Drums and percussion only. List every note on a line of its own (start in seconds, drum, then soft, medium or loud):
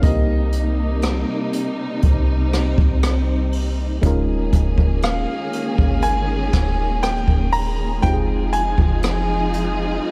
0.03 kick loud
0.03 closed hi-hat medium
0.52 closed hi-hat medium
1.02 cross-stick loud
1.02 closed hi-hat medium
1.53 closed hi-hat medium
2.02 kick medium
2.02 closed hi-hat medium
2.53 cross-stick medium
2.53 closed hi-hat medium
2.78 kick loud
3.03 cross-stick loud
3.03 closed hi-hat medium
3.52 open hi-hat medium
4.03 kick loud
4.03 closed hi-hat medium
4.53 kick medium
4.53 closed hi-hat medium
4.78 kick medium
5.02 cross-stick loud
5.02 closed hi-hat medium
5.53 closed hi-hat medium
5.78 kick medium
6.02 closed hi-hat medium
6.53 kick medium
6.53 cross-stick medium
6.53 closed hi-hat medium
7.03 cross-stick loud
7.03 closed hi-hat medium
7.28 kick medium
7.53 open hi-hat medium
8.03 kick loud
8.03 closed hi-hat medium
8.53 closed hi-hat medium
8.78 kick medium
9.03 cross-stick loud
9.03 closed hi-hat medium
9.53 closed hi-hat medium